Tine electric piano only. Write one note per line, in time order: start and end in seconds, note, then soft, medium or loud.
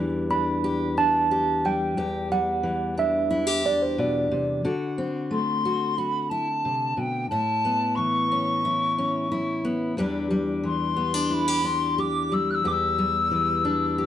0.31 0.99 B5 medium
0.98 1.66 A5 loud
1.66 2.28 G5 medium
2.32 2.94 F#5 loud
2.99 3.67 E5 medium
3.66 3.82 D5 medium
3.82 3.99 C5 medium
4.00 4.61 D5 medium